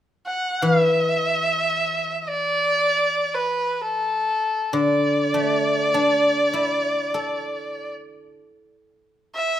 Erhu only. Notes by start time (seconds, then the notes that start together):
0.27 F#5
0.62 F5
0.80 E5
2.22 E5
2.28 D5
3.34 B4
3.82 A4
4.73 D5
9.35 E5